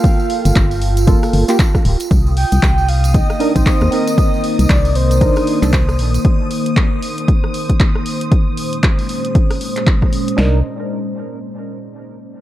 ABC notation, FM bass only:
X:1
M:4/4
L:1/16
Q:"Swing 16ths" 1/4=116
K:Cm
V:1 name="FM bass" clef=bass
z3 G,,, G,,,4- G,,, z G,,, z3 D,,, z | C,,3 C,, C,,4- C,, z2 B,,, z E,, z2 | z3 C,, C,,4- C,, z2 C,,3 B,,, z | z16 |
z16 | C,,2 z12 z2 |]